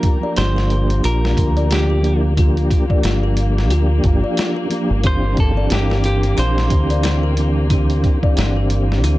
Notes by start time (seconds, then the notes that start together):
Already playing: F3 A#3 D4 F4 G4 A#4
0.03 kick, closed hi-hat
0.20 F3 A#3 D4 D5
0.25 G4
0.36 G1 F4 C5, snare, closed hi-hat
0.56 G4, snare
0.70 closed hi-hat
0.90 closed hi-hat
1.04 A#1 F4 A#4, closed hi-hat
1.25 snare
1.37 D2, kick, closed hi-hat
1.57 D5, closed hi-hat
1.70 F4 G4, snare, closed hi-hat
1.90 G4
2.02 F3 A#3 D4 G4, closed hi-hat
2.37 F3 A#3 D4 F4 G4, kick, closed hi-hat
2.57 closed hi-hat
2.71 kick, closed hi-hat
2.88 F3 A#3 D4 D5, kick
2.93 G4
3.03 G1 F4, snare, closed hi-hat
3.23 G4
3.37 closed hi-hat
3.58 snare
3.70 D2 F4, closed hi-hat
4.04 G1, kick, closed hi-hat
4.24 D5
4.37 F4, snare, closed hi-hat
4.56 G4
4.70 F3 A#3 D4 G4, closed hi-hat
4.90 G1
5.03 E3 C4 D4 E4 G4, kick, closed hi-hat
5.07 C5
5.37 A4, kick, closed hi-hat
5.55 E3 C4 D4 D5
5.59 G4
5.70 G1 E4 G4, snare, closed hi-hat
5.90 G4, snare
6.04 G4, closed hi-hat
6.23 closed hi-hat
6.37 A#1 E4 C5, closed hi-hat
6.58 snare
6.70 D2, kick, closed hi-hat
6.90 D5, closed hi-hat
7.03 E4, snare, closed hi-hat
7.23 G4
7.37 E3 C4 D4 G4, closed hi-hat
7.70 E3 C4 D4 E4 G4, kick, closed hi-hat
7.90 closed hi-hat
8.04 kick, closed hi-hat
8.22 E3 C4 D4 D5, kick
8.26 G4
8.37 G1 E4, snare, closed hi-hat
8.57 G4
8.70 closed hi-hat
8.92 snare
9.04 D2 E4, closed hi-hat